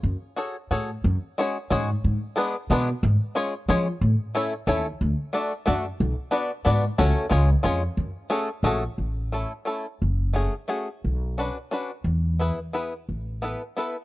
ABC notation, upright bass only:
X:1
M:3/4
L:1/8
Q:"Swing" 1/4=179
K:F#m
V:1 name="Upright bass" clef=bass
F,, z3 A,,2 | F,, z3 G,,2 | G,, z3 B,,2 | G,, z3 ^E,2 |
A,, z3 ^D,,2 | D,, z3 F,,2 | B,,, z3 G,,2 | C,, z C,,2 ^E,,2 |
F,, z3 ^A,,,2 | [K:A] A,,,4 z2 | F,,,4 z2 | B,,,4 z2 |
E,,4 z2 | A,,,4 z2 |]